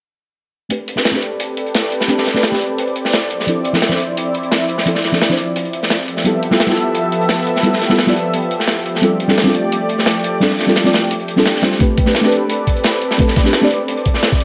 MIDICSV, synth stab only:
0, 0, Header, 1, 2, 480
1, 0, Start_track
1, 0, Key_signature, 0, "minor"
1, 0, Tempo, 346821
1, 976, Time_signature, 4, 2, 24, 8
1, 19986, End_track
2, 0, Start_track
2, 0, Title_t, "Synth stab"
2, 0, Program_c, 0, 62
2, 955, Note_on_c, 0, 57, 73
2, 966, Note_on_c, 0, 60, 67
2, 976, Note_on_c, 0, 62, 69
2, 986, Note_on_c, 0, 67, 66
2, 996, Note_on_c, 0, 71, 80
2, 1300, Note_off_c, 0, 57, 0
2, 1306, Note_off_c, 0, 60, 0
2, 1311, Note_off_c, 0, 62, 0
2, 1316, Note_off_c, 0, 67, 0
2, 1320, Note_on_c, 0, 57, 72
2, 1321, Note_off_c, 0, 71, 0
2, 1331, Note_on_c, 0, 60, 68
2, 1341, Note_on_c, 0, 62, 70
2, 1352, Note_on_c, 0, 67, 70
2, 1362, Note_on_c, 0, 71, 84
2, 1522, Note_off_c, 0, 57, 0
2, 1538, Note_on_c, 0, 57, 73
2, 1546, Note_off_c, 0, 60, 0
2, 1551, Note_off_c, 0, 62, 0
2, 1556, Note_off_c, 0, 67, 0
2, 1560, Note_on_c, 0, 60, 67
2, 1561, Note_off_c, 0, 71, 0
2, 1581, Note_on_c, 0, 62, 69
2, 1602, Note_on_c, 0, 67, 65
2, 1623, Note_on_c, 0, 71, 82
2, 2847, Note_off_c, 0, 57, 0
2, 2857, Note_off_c, 0, 60, 0
2, 2868, Note_off_c, 0, 62, 0
2, 2875, Note_on_c, 0, 57, 76
2, 2879, Note_off_c, 0, 67, 0
2, 2885, Note_on_c, 0, 60, 70
2, 2889, Note_off_c, 0, 71, 0
2, 2896, Note_on_c, 0, 62, 69
2, 2906, Note_on_c, 0, 67, 66
2, 2918, Note_on_c, 0, 71, 85
2, 3220, Note_off_c, 0, 57, 0
2, 3225, Note_off_c, 0, 60, 0
2, 3231, Note_off_c, 0, 62, 0
2, 3236, Note_off_c, 0, 67, 0
2, 3238, Note_on_c, 0, 57, 74
2, 3242, Note_off_c, 0, 71, 0
2, 3248, Note_on_c, 0, 60, 67
2, 3259, Note_on_c, 0, 62, 67
2, 3270, Note_on_c, 0, 67, 69
2, 3280, Note_on_c, 0, 71, 81
2, 3459, Note_off_c, 0, 57, 0
2, 3464, Note_off_c, 0, 60, 0
2, 3470, Note_off_c, 0, 62, 0
2, 3475, Note_off_c, 0, 67, 0
2, 3479, Note_on_c, 0, 57, 71
2, 3480, Note_off_c, 0, 71, 0
2, 3489, Note_on_c, 0, 60, 68
2, 3500, Note_on_c, 0, 62, 65
2, 3511, Note_on_c, 0, 67, 68
2, 3522, Note_on_c, 0, 74, 77
2, 3585, Note_off_c, 0, 57, 0
2, 3590, Note_off_c, 0, 60, 0
2, 3595, Note_off_c, 0, 62, 0
2, 3601, Note_off_c, 0, 67, 0
2, 3606, Note_off_c, 0, 74, 0
2, 4793, Note_on_c, 0, 53, 71
2, 4804, Note_on_c, 0, 60, 65
2, 4814, Note_on_c, 0, 62, 67
2, 4824, Note_on_c, 0, 64, 67
2, 4836, Note_on_c, 0, 69, 82
2, 5139, Note_off_c, 0, 53, 0
2, 5145, Note_off_c, 0, 60, 0
2, 5150, Note_off_c, 0, 62, 0
2, 5155, Note_off_c, 0, 64, 0
2, 5158, Note_on_c, 0, 53, 76
2, 5161, Note_off_c, 0, 69, 0
2, 5169, Note_on_c, 0, 60, 69
2, 5179, Note_on_c, 0, 62, 69
2, 5189, Note_on_c, 0, 64, 67
2, 5202, Note_on_c, 0, 69, 84
2, 5362, Note_off_c, 0, 53, 0
2, 5379, Note_on_c, 0, 53, 72
2, 5385, Note_off_c, 0, 60, 0
2, 5390, Note_off_c, 0, 62, 0
2, 5395, Note_off_c, 0, 64, 0
2, 5399, Note_on_c, 0, 60, 66
2, 5401, Note_off_c, 0, 69, 0
2, 5421, Note_on_c, 0, 62, 67
2, 5442, Note_on_c, 0, 64, 65
2, 5463, Note_on_c, 0, 69, 80
2, 6687, Note_off_c, 0, 53, 0
2, 6697, Note_off_c, 0, 60, 0
2, 6708, Note_off_c, 0, 62, 0
2, 6714, Note_on_c, 0, 53, 76
2, 6719, Note_off_c, 0, 64, 0
2, 6724, Note_on_c, 0, 60, 68
2, 6729, Note_off_c, 0, 69, 0
2, 6735, Note_on_c, 0, 62, 67
2, 6745, Note_on_c, 0, 64, 69
2, 6756, Note_on_c, 0, 69, 82
2, 7060, Note_off_c, 0, 53, 0
2, 7065, Note_off_c, 0, 60, 0
2, 7071, Note_off_c, 0, 62, 0
2, 7075, Note_off_c, 0, 64, 0
2, 7079, Note_on_c, 0, 53, 76
2, 7081, Note_off_c, 0, 69, 0
2, 7090, Note_on_c, 0, 60, 66
2, 7100, Note_on_c, 0, 62, 66
2, 7112, Note_on_c, 0, 64, 67
2, 7122, Note_on_c, 0, 69, 81
2, 7300, Note_off_c, 0, 53, 0
2, 7305, Note_off_c, 0, 60, 0
2, 7310, Note_off_c, 0, 62, 0
2, 7316, Note_off_c, 0, 64, 0
2, 7320, Note_on_c, 0, 53, 74
2, 7321, Note_off_c, 0, 69, 0
2, 7330, Note_on_c, 0, 60, 69
2, 7341, Note_on_c, 0, 62, 66
2, 7352, Note_on_c, 0, 64, 66
2, 7363, Note_on_c, 0, 72, 83
2, 7425, Note_off_c, 0, 53, 0
2, 7431, Note_off_c, 0, 60, 0
2, 7436, Note_off_c, 0, 62, 0
2, 7442, Note_off_c, 0, 64, 0
2, 7447, Note_off_c, 0, 72, 0
2, 8635, Note_on_c, 0, 55, 73
2, 8646, Note_on_c, 0, 59, 67
2, 8656, Note_on_c, 0, 64, 69
2, 8666, Note_on_c, 0, 65, 66
2, 8677, Note_on_c, 0, 69, 81
2, 8980, Note_off_c, 0, 55, 0
2, 8986, Note_off_c, 0, 59, 0
2, 8991, Note_off_c, 0, 64, 0
2, 8996, Note_off_c, 0, 65, 0
2, 9001, Note_off_c, 0, 69, 0
2, 9001, Note_on_c, 0, 55, 76
2, 9012, Note_on_c, 0, 59, 69
2, 9021, Note_on_c, 0, 64, 69
2, 9034, Note_on_c, 0, 65, 68
2, 9044, Note_on_c, 0, 69, 83
2, 9204, Note_off_c, 0, 55, 0
2, 9221, Note_on_c, 0, 55, 73
2, 9226, Note_off_c, 0, 59, 0
2, 9231, Note_off_c, 0, 64, 0
2, 9237, Note_off_c, 0, 65, 0
2, 9242, Note_off_c, 0, 69, 0
2, 9242, Note_on_c, 0, 59, 66
2, 9263, Note_on_c, 0, 64, 67
2, 9284, Note_on_c, 0, 65, 68
2, 9306, Note_on_c, 0, 69, 80
2, 10528, Note_off_c, 0, 55, 0
2, 10539, Note_off_c, 0, 59, 0
2, 10549, Note_off_c, 0, 64, 0
2, 10555, Note_on_c, 0, 55, 75
2, 10560, Note_off_c, 0, 65, 0
2, 10565, Note_on_c, 0, 59, 69
2, 10570, Note_off_c, 0, 69, 0
2, 10576, Note_on_c, 0, 64, 69
2, 10586, Note_on_c, 0, 65, 69
2, 10597, Note_on_c, 0, 69, 84
2, 10900, Note_off_c, 0, 55, 0
2, 10905, Note_off_c, 0, 59, 0
2, 10911, Note_off_c, 0, 64, 0
2, 10916, Note_off_c, 0, 65, 0
2, 10920, Note_on_c, 0, 55, 75
2, 10921, Note_off_c, 0, 69, 0
2, 10931, Note_on_c, 0, 59, 68
2, 10942, Note_on_c, 0, 64, 68
2, 10953, Note_on_c, 0, 65, 69
2, 10963, Note_on_c, 0, 69, 82
2, 11140, Note_off_c, 0, 55, 0
2, 11146, Note_off_c, 0, 59, 0
2, 11151, Note_off_c, 0, 64, 0
2, 11157, Note_off_c, 0, 65, 0
2, 11161, Note_on_c, 0, 55, 73
2, 11162, Note_off_c, 0, 69, 0
2, 11171, Note_on_c, 0, 59, 66
2, 11181, Note_on_c, 0, 64, 68
2, 11191, Note_on_c, 0, 65, 68
2, 11202, Note_on_c, 0, 74, 83
2, 11266, Note_off_c, 0, 55, 0
2, 11271, Note_off_c, 0, 59, 0
2, 11276, Note_off_c, 0, 64, 0
2, 11281, Note_off_c, 0, 65, 0
2, 11287, Note_off_c, 0, 74, 0
2, 12472, Note_on_c, 0, 55, 76
2, 12484, Note_on_c, 0, 60, 68
2, 12494, Note_on_c, 0, 62, 66
2, 12506, Note_on_c, 0, 65, 67
2, 12516, Note_on_c, 0, 69, 82
2, 12819, Note_off_c, 0, 55, 0
2, 12825, Note_off_c, 0, 60, 0
2, 12830, Note_off_c, 0, 62, 0
2, 12836, Note_off_c, 0, 65, 0
2, 12837, Note_on_c, 0, 55, 74
2, 12841, Note_off_c, 0, 69, 0
2, 12848, Note_on_c, 0, 60, 69
2, 12859, Note_on_c, 0, 62, 68
2, 12869, Note_on_c, 0, 65, 70
2, 12880, Note_on_c, 0, 69, 84
2, 13039, Note_off_c, 0, 55, 0
2, 13056, Note_on_c, 0, 55, 71
2, 13060, Note_off_c, 0, 60, 0
2, 13070, Note_off_c, 0, 62, 0
2, 13075, Note_off_c, 0, 65, 0
2, 13077, Note_on_c, 0, 60, 70
2, 13080, Note_off_c, 0, 69, 0
2, 13098, Note_on_c, 0, 62, 69
2, 13120, Note_on_c, 0, 65, 68
2, 13140, Note_on_c, 0, 69, 80
2, 14365, Note_off_c, 0, 55, 0
2, 14376, Note_off_c, 0, 60, 0
2, 14387, Note_off_c, 0, 62, 0
2, 14394, Note_on_c, 0, 55, 77
2, 14398, Note_off_c, 0, 65, 0
2, 14405, Note_on_c, 0, 60, 69
2, 14408, Note_off_c, 0, 69, 0
2, 14414, Note_on_c, 0, 62, 71
2, 14426, Note_on_c, 0, 65, 71
2, 14436, Note_on_c, 0, 69, 82
2, 14740, Note_off_c, 0, 55, 0
2, 14745, Note_off_c, 0, 60, 0
2, 14750, Note_off_c, 0, 62, 0
2, 14756, Note_off_c, 0, 65, 0
2, 14758, Note_on_c, 0, 55, 75
2, 14761, Note_off_c, 0, 69, 0
2, 14768, Note_on_c, 0, 60, 66
2, 14779, Note_on_c, 0, 62, 68
2, 14790, Note_on_c, 0, 65, 67
2, 14801, Note_on_c, 0, 69, 81
2, 14979, Note_off_c, 0, 55, 0
2, 14984, Note_off_c, 0, 60, 0
2, 14990, Note_off_c, 0, 62, 0
2, 14995, Note_off_c, 0, 65, 0
2, 14998, Note_on_c, 0, 55, 72
2, 15001, Note_off_c, 0, 69, 0
2, 15009, Note_on_c, 0, 60, 67
2, 15020, Note_on_c, 0, 62, 68
2, 15030, Note_on_c, 0, 65, 65
2, 15042, Note_on_c, 0, 74, 81
2, 15104, Note_off_c, 0, 55, 0
2, 15110, Note_off_c, 0, 60, 0
2, 15116, Note_off_c, 0, 62, 0
2, 15121, Note_off_c, 0, 65, 0
2, 15127, Note_off_c, 0, 74, 0
2, 15721, Note_on_c, 0, 55, 87
2, 15732, Note_on_c, 0, 60, 81
2, 15742, Note_on_c, 0, 62, 79
2, 15753, Note_on_c, 0, 65, 81
2, 15763, Note_on_c, 0, 69, 98
2, 15826, Note_off_c, 0, 55, 0
2, 15831, Note_off_c, 0, 60, 0
2, 15837, Note_off_c, 0, 62, 0
2, 15842, Note_off_c, 0, 65, 0
2, 15847, Note_off_c, 0, 69, 0
2, 16077, Note_on_c, 0, 55, 70
2, 16088, Note_on_c, 0, 60, 64
2, 16099, Note_on_c, 0, 62, 67
2, 16109, Note_on_c, 0, 65, 65
2, 16119, Note_on_c, 0, 72, 77
2, 16299, Note_off_c, 0, 55, 0
2, 16304, Note_off_c, 0, 60, 0
2, 16309, Note_off_c, 0, 62, 0
2, 16314, Note_off_c, 0, 65, 0
2, 16315, Note_on_c, 0, 57, 73
2, 16320, Note_off_c, 0, 72, 0
2, 16326, Note_on_c, 0, 60, 66
2, 16336, Note_on_c, 0, 62, 67
2, 16347, Note_on_c, 0, 67, 67
2, 16357, Note_on_c, 0, 71, 80
2, 16660, Note_off_c, 0, 57, 0
2, 16666, Note_off_c, 0, 60, 0
2, 16671, Note_off_c, 0, 62, 0
2, 16676, Note_off_c, 0, 67, 0
2, 16679, Note_on_c, 0, 57, 76
2, 16681, Note_off_c, 0, 71, 0
2, 16690, Note_on_c, 0, 60, 68
2, 16701, Note_on_c, 0, 62, 71
2, 16712, Note_on_c, 0, 67, 71
2, 16722, Note_on_c, 0, 71, 84
2, 16882, Note_off_c, 0, 57, 0
2, 16899, Note_on_c, 0, 57, 75
2, 16905, Note_off_c, 0, 60, 0
2, 16911, Note_off_c, 0, 62, 0
2, 16916, Note_off_c, 0, 67, 0
2, 16920, Note_on_c, 0, 60, 66
2, 16921, Note_off_c, 0, 71, 0
2, 16942, Note_on_c, 0, 62, 68
2, 16962, Note_on_c, 0, 67, 69
2, 16983, Note_on_c, 0, 71, 79
2, 18207, Note_off_c, 0, 57, 0
2, 18217, Note_off_c, 0, 60, 0
2, 18228, Note_off_c, 0, 62, 0
2, 18236, Note_on_c, 0, 57, 77
2, 18239, Note_off_c, 0, 67, 0
2, 18247, Note_on_c, 0, 60, 70
2, 18249, Note_off_c, 0, 71, 0
2, 18258, Note_on_c, 0, 62, 70
2, 18268, Note_on_c, 0, 67, 69
2, 18278, Note_on_c, 0, 71, 88
2, 18581, Note_off_c, 0, 57, 0
2, 18586, Note_off_c, 0, 60, 0
2, 18592, Note_off_c, 0, 62, 0
2, 18597, Note_off_c, 0, 67, 0
2, 18598, Note_on_c, 0, 57, 76
2, 18602, Note_off_c, 0, 71, 0
2, 18609, Note_on_c, 0, 60, 67
2, 18621, Note_on_c, 0, 62, 66
2, 18631, Note_on_c, 0, 67, 69
2, 18642, Note_on_c, 0, 71, 81
2, 18819, Note_off_c, 0, 57, 0
2, 18825, Note_off_c, 0, 60, 0
2, 18831, Note_off_c, 0, 62, 0
2, 18836, Note_off_c, 0, 67, 0
2, 18840, Note_on_c, 0, 57, 75
2, 18841, Note_off_c, 0, 71, 0
2, 18850, Note_on_c, 0, 60, 68
2, 18861, Note_on_c, 0, 62, 65
2, 18872, Note_on_c, 0, 67, 69
2, 18883, Note_on_c, 0, 74, 81
2, 18946, Note_off_c, 0, 57, 0
2, 18951, Note_off_c, 0, 60, 0
2, 18956, Note_off_c, 0, 62, 0
2, 18961, Note_off_c, 0, 67, 0
2, 18967, Note_off_c, 0, 74, 0
2, 19986, End_track
0, 0, End_of_file